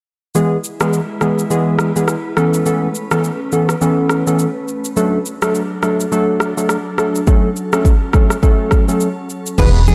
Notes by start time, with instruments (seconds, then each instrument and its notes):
0.35 synth keys E3 G#3 B3 G#4, ambient pad G#3 E4 B4, shaker
0.64 shaker
0.80 synth keys E3 G#3 B3 G#4, cross-stick, shaker
0.93 shaker
1.21 synth keys E3 G#3 B3 G#4, cross-stick, shaker
1.39 shaker
1.50 synth keys E3 G#3 B3 G#4, shaker
1.79 cross-stick, shaker
1.96 synth keys E3 G#3 B3 G#4, shaker
2.08 cross-stick, shaker
2.37 synth keys E3 B3 C#4 A4, ambient pad A3 C#4, cross-stick, shaker
2.54 shaker
2.66 synth keys E3 B3 C#4 A4, shaker
2.95 shaker
3.11 synth keys E3 B3 C#4 A4, cross-stick, shaker
3.24 shaker
3.52 synth keys E3 B3 C#4 A4, shaker
3.69 cross-stick, shaker
3.81 synth keys E3 B3 C#4 A4, shaker
4.09 cross-stick, shaker
4.27 synth keys E3 B3 C#4 A4, shaker
4.39 shaker
4.68 shaker
4.85 shaker
4.96 synth keys F#3 A3 D4 A4, ambient pad F#3 D4 A4, shaker
5.26 shaker
5.42 synth keys F#3 A3 D4 A4, cross-stick, shaker
5.55 shaker
5.83 synth keys F#3 A3 D4 A4, cross-stick, shaker
6.00 shaker
6.12 synth keys F#3 A3 D4 A4, shaker
6.40 cross-stick, shaker
6.57 synth keys F#3 A3 D4 A4, shaker
6.69 cross-stick, shaker
6.98 synth keys F#3 A3 D4 A4, cross-stick, shaker
7.15 shaker
7.27 synth keys F#3 A3 C#4 A4, ambient pad C#4, kick, shaker
7.56 shaker
7.73 synth keys F#3 A3 C#4 A4, cross-stick, shaker
7.85 kick, shaker
8.13 synth keys F#3 A3 C#4 A4, kick, cross-stick, shaker
8.30 cross-stick, shaker
8.43 synth keys F#3 A3 C#4 A4, kick, shaker
8.71 kick, cross-stick, shaker
8.88 synth keys F#3 A3 C#4 A4, shaker
9.00 shaker
9.30 shaker
9.46 shaker
9.58 analog synth bass E1, synth keys E3 G#3 B3 G#4, ambient pad E3 B3 G#4, soft synth lead B4, clean electric guitar B4, kick, crash, low conga, shaker
9.87 clean electric guitar G#4, high conga, shaker